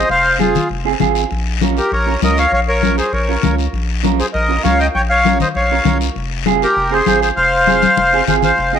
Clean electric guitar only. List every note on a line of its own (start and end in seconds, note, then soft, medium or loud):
0.38 0.55 C4 medium
0.38 0.56 F4 medium
0.38 0.56 G#4 medium
0.85 0.91 C4 medium
0.85 0.91 F4 medium
0.85 0.91 G#4 medium
1.00 1.22 C4 medium
1.00 1.22 F4 medium
1.00 1.22 G#4 medium
1.62 1.77 C#4 medium
1.62 1.78 F4 medium
1.62 1.78 A#4 medium
2.06 2.12 C#4 medium
2.06 2.12 F4 medium
2.06 2.12 A#4 medium
2.22 2.43 C#4 medium
2.22 2.43 F4 medium
2.22 2.44 A#4 medium
2.82 2.98 C#4 medium
2.82 2.99 F4 medium
2.82 2.99 A#4 medium
3.28 3.34 C#4 medium
3.28 3.34 F4 medium
3.28 3.34 A#4 medium
3.43 3.64 C#4 medium
3.43 3.65 F4 medium
3.43 3.65 A#4 medium
4.03 4.19 C#4 medium
4.03 4.20 F4 medium
4.03 4.20 A#4 medium
4.48 4.54 C#4 medium
4.48 4.54 F4 medium
4.48 4.55 A#4 medium
4.64 4.85 C#4 medium
4.64 4.85 F4 medium
4.64 4.85 A#4 medium
5.25 5.41 C#4 medium
5.25 5.41 F4 medium
5.25 5.41 A#4 medium
5.71 5.76 C#4 medium
5.71 5.76 F4 medium
5.71 5.77 A#4 medium
5.85 6.06 C#4 medium
5.85 6.07 F4 medium
5.85 6.07 A#4 medium
6.46 6.62 C4 medium
6.46 6.62 F4 medium
6.46 6.62 G#4 medium
6.91 6.97 C4 medium
6.91 6.97 F4 medium
6.91 6.97 G#4 medium
7.06 7.28 C4 medium
7.06 7.28 F4 medium
7.06 7.28 G#4 medium
7.67 7.83 C4 medium
7.67 7.83 F4 medium
7.67 7.84 G#4 medium
8.13 8.18 C4 medium
8.13 8.19 F4 medium
8.13 8.19 G#4 medium
8.27 8.49 C4 medium
8.27 8.49 F4 medium
8.27 8.49 G#4 medium
8.73 8.78 C4 medium
8.73 8.79 F4 medium
8.73 8.79 G#4 medium